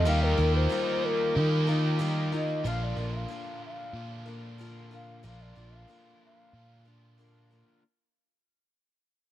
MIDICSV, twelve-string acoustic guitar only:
0, 0, Header, 1, 2, 480
1, 0, Start_track
1, 0, Tempo, 647249
1, 46, Time_signature, 4, 2, 24, 8
1, 6907, End_track
2, 0, Start_track
2, 0, Title_t, "Twelve-string acoustic guitar"
2, 0, Program_c, 0, 25
2, 39, Note_on_c, 0, 51, 68
2, 42, Note_on_c, 0, 55, 79
2, 46, Note_on_c, 0, 63, 77
2, 49, Note_on_c, 0, 65, 77
2, 52, Note_on_c, 0, 70, 81
2, 270, Note_off_c, 0, 70, 0
2, 279, Note_on_c, 0, 70, 47
2, 282, Note_off_c, 0, 51, 0
2, 282, Note_off_c, 0, 65, 0
2, 284, Note_off_c, 0, 55, 0
2, 286, Note_off_c, 0, 63, 0
2, 291, Note_on_c, 0, 65, 42
2, 301, Note_on_c, 0, 63, 45
2, 513, Note_off_c, 0, 63, 0
2, 514, Note_on_c, 0, 55, 54
2, 522, Note_off_c, 0, 70, 0
2, 522, Note_on_c, 0, 63, 65
2, 523, Note_off_c, 0, 65, 0
2, 532, Note_on_c, 0, 65, 58
2, 535, Note_on_c, 0, 70, 67
2, 1237, Note_off_c, 0, 70, 0
2, 1239, Note_off_c, 0, 55, 0
2, 1240, Note_on_c, 0, 70, 46
2, 1243, Note_off_c, 0, 63, 0
2, 1250, Note_off_c, 0, 65, 0
2, 1253, Note_on_c, 0, 65, 45
2, 1264, Note_on_c, 0, 63, 41
2, 1473, Note_off_c, 0, 63, 0
2, 1475, Note_on_c, 0, 55, 66
2, 1479, Note_off_c, 0, 65, 0
2, 1481, Note_on_c, 0, 63, 66
2, 1482, Note_off_c, 0, 70, 0
2, 1488, Note_on_c, 0, 65, 68
2, 1495, Note_on_c, 0, 70, 70
2, 1713, Note_off_c, 0, 70, 0
2, 1720, Note_off_c, 0, 55, 0
2, 1722, Note_on_c, 0, 70, 45
2, 1723, Note_off_c, 0, 63, 0
2, 1723, Note_off_c, 0, 65, 0
2, 1732, Note_on_c, 0, 65, 45
2, 1739, Note_on_c, 0, 63, 35
2, 1963, Note_off_c, 0, 70, 0
2, 1964, Note_on_c, 0, 46, 70
2, 1969, Note_off_c, 0, 65, 0
2, 1969, Note_on_c, 0, 58, 74
2, 1970, Note_on_c, 0, 53, 71
2, 1972, Note_off_c, 0, 63, 0
2, 1976, Note_on_c, 0, 62, 80
2, 1979, Note_on_c, 0, 65, 81
2, 1980, Note_on_c, 0, 70, 82
2, 2192, Note_off_c, 0, 70, 0
2, 2200, Note_on_c, 0, 70, 46
2, 2201, Note_off_c, 0, 65, 0
2, 2204, Note_off_c, 0, 46, 0
2, 2205, Note_off_c, 0, 62, 0
2, 2207, Note_off_c, 0, 53, 0
2, 2207, Note_off_c, 0, 58, 0
2, 2210, Note_on_c, 0, 65, 47
2, 2214, Note_on_c, 0, 62, 42
2, 2223, Note_on_c, 0, 58, 40
2, 2427, Note_off_c, 0, 58, 0
2, 2435, Note_off_c, 0, 62, 0
2, 2436, Note_on_c, 0, 58, 64
2, 2443, Note_off_c, 0, 70, 0
2, 2444, Note_off_c, 0, 65, 0
2, 2444, Note_on_c, 0, 62, 57
2, 2453, Note_on_c, 0, 65, 61
2, 2459, Note_on_c, 0, 70, 62
2, 3154, Note_off_c, 0, 70, 0
2, 3157, Note_on_c, 0, 70, 49
2, 3165, Note_off_c, 0, 65, 0
2, 3168, Note_on_c, 0, 65, 46
2, 3169, Note_off_c, 0, 62, 0
2, 3172, Note_on_c, 0, 62, 44
2, 3178, Note_off_c, 0, 58, 0
2, 3181, Note_on_c, 0, 58, 43
2, 3390, Note_off_c, 0, 58, 0
2, 3398, Note_off_c, 0, 62, 0
2, 3398, Note_on_c, 0, 58, 60
2, 3401, Note_off_c, 0, 70, 0
2, 3407, Note_off_c, 0, 65, 0
2, 3407, Note_on_c, 0, 62, 67
2, 3415, Note_on_c, 0, 65, 71
2, 3422, Note_on_c, 0, 70, 73
2, 3631, Note_off_c, 0, 70, 0
2, 3640, Note_on_c, 0, 70, 42
2, 3641, Note_off_c, 0, 65, 0
2, 3642, Note_off_c, 0, 58, 0
2, 3646, Note_off_c, 0, 62, 0
2, 3649, Note_on_c, 0, 65, 45
2, 3656, Note_on_c, 0, 62, 44
2, 3664, Note_on_c, 0, 58, 39
2, 3875, Note_off_c, 0, 58, 0
2, 3877, Note_on_c, 0, 46, 69
2, 3880, Note_off_c, 0, 62, 0
2, 3883, Note_off_c, 0, 70, 0
2, 3883, Note_on_c, 0, 53, 77
2, 3884, Note_off_c, 0, 65, 0
2, 3884, Note_on_c, 0, 58, 71
2, 3889, Note_on_c, 0, 62, 69
2, 3893, Note_on_c, 0, 65, 78
2, 3893, Note_on_c, 0, 70, 82
2, 4111, Note_off_c, 0, 70, 0
2, 4116, Note_off_c, 0, 65, 0
2, 4120, Note_on_c, 0, 70, 48
2, 4121, Note_off_c, 0, 46, 0
2, 4124, Note_off_c, 0, 53, 0
2, 4124, Note_on_c, 0, 65, 47
2, 4125, Note_off_c, 0, 58, 0
2, 4125, Note_off_c, 0, 62, 0
2, 4134, Note_on_c, 0, 62, 43
2, 4140, Note_on_c, 0, 58, 44
2, 4350, Note_off_c, 0, 58, 0
2, 4357, Note_off_c, 0, 62, 0
2, 4359, Note_on_c, 0, 58, 55
2, 4363, Note_off_c, 0, 65, 0
2, 4363, Note_off_c, 0, 70, 0
2, 4366, Note_on_c, 0, 62, 57
2, 4372, Note_on_c, 0, 65, 61
2, 4378, Note_on_c, 0, 70, 65
2, 5072, Note_off_c, 0, 70, 0
2, 5078, Note_off_c, 0, 65, 0
2, 5081, Note_on_c, 0, 70, 52
2, 5083, Note_off_c, 0, 58, 0
2, 5087, Note_off_c, 0, 62, 0
2, 5087, Note_on_c, 0, 65, 45
2, 5099, Note_on_c, 0, 62, 41
2, 5103, Note_on_c, 0, 58, 38
2, 5314, Note_off_c, 0, 58, 0
2, 5322, Note_off_c, 0, 62, 0
2, 5323, Note_on_c, 0, 58, 61
2, 5324, Note_off_c, 0, 70, 0
2, 5327, Note_off_c, 0, 65, 0
2, 5331, Note_on_c, 0, 62, 62
2, 5338, Note_on_c, 0, 65, 66
2, 5343, Note_on_c, 0, 70, 66
2, 5558, Note_off_c, 0, 70, 0
2, 5565, Note_off_c, 0, 58, 0
2, 5567, Note_on_c, 0, 70, 51
2, 5569, Note_off_c, 0, 62, 0
2, 5570, Note_off_c, 0, 65, 0
2, 5579, Note_on_c, 0, 65, 49
2, 5582, Note_on_c, 0, 62, 46
2, 5589, Note_on_c, 0, 58, 47
2, 5807, Note_off_c, 0, 70, 0
2, 5813, Note_off_c, 0, 65, 0
2, 5815, Note_off_c, 0, 62, 0
2, 5819, Note_off_c, 0, 58, 0
2, 6907, End_track
0, 0, End_of_file